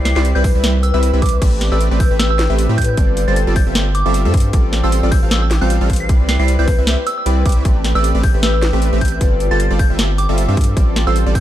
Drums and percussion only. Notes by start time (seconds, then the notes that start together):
0.05 snare, closed hi-hat
0.16 snare
0.25 closed hi-hat
0.44 kick, open hi-hat
0.64 snare, closed hi-hat
0.83 closed hi-hat
1.03 closed hi-hat
1.22 kick, closed hi-hat
1.26 closed hi-hat
1.29 closed hi-hat
1.42 kick, closed hi-hat, crash
1.61 snare, closed hi-hat
1.81 closed hi-hat
2.00 kick, open hi-hat
2.20 snare, closed hi-hat
2.39 snare, closed hi-hat
2.59 closed hi-hat
2.78 kick, closed hi-hat
2.82 closed hi-hat
2.84 closed hi-hat
2.97 kick, closed hi-hat
3.17 closed hi-hat
3.36 closed hi-hat
3.56 kick, open hi-hat
3.75 snare, closed hi-hat
3.95 closed hi-hat
4.14 closed hi-hat
4.34 kick, closed hi-hat
4.37 closed hi-hat
4.40 closed hi-hat
4.53 kick, closed hi-hat
4.73 snare, closed hi-hat
4.92 closed hi-hat
5.12 kick, open hi-hat
5.31 snare, closed hi-hat
5.51 snare, closed hi-hat
5.70 closed hi-hat
5.90 kick, closed hi-hat
5.93 closed hi-hat
5.96 closed hi-hat
6.09 kick, closed hi-hat
6.29 snare, closed hi-hat
6.48 closed hi-hat
6.68 kick, open hi-hat
6.87 snare, closed hi-hat
7.07 closed hi-hat
7.26 closed hi-hat
7.46 kick, closed hi-hat
7.49 closed hi-hat
7.52 closed hi-hat
7.65 kick, closed hi-hat
7.84 snare, closed hi-hat
8.04 closed hi-hat
8.23 kick, open hi-hat
8.43 snare, closed hi-hat
8.62 snare, closed hi-hat
8.82 closed hi-hat
9.01 kick, closed hi-hat
9.05 closed hi-hat
9.08 closed hi-hat
9.21 kick, closed hi-hat
9.40 closed hi-hat
9.60 closed hi-hat
9.79 kick, open hi-hat
9.99 snare, closed hi-hat
10.18 closed hi-hat
10.38 closed hi-hat
10.57 kick, closed hi-hat
10.61 closed hi-hat
10.64 closed hi-hat
10.77 kick, closed hi-hat
10.96 snare, closed hi-hat
11.16 closed hi-hat
11.35 kick, open hi-hat